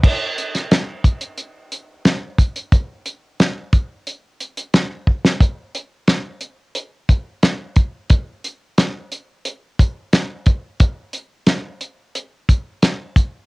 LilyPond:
\new DrumStaff \with { instrumentName = "Drums" } \drummode { \time 4/4 \tempo 4 = 89 <cymc bd>8 hh16 <hh sn>16 <hh sn>8 <hh bd>16 hh16 hh8 hh8 <hh sn>8 <hh bd>16 hh16 | <hh bd>8 hh8 <hh sn>8 <hh bd>8 hh8 hh16 hh16 <hh sn>8 bd16 sn16 | <hh bd>8 hh8 <hh sn>8 hh8 hh8 <hh bd>8 <hh sn>8 <hh bd>8 | <hh bd>8 hh8 <hh sn>8 hh8 hh8 <hh bd>8 <hh sn>8 <hh bd>8 |
<hh bd>8 hh8 <hh sn>8 hh8 hh8 <hh bd>8 <hh sn>8 <hh bd>8 | }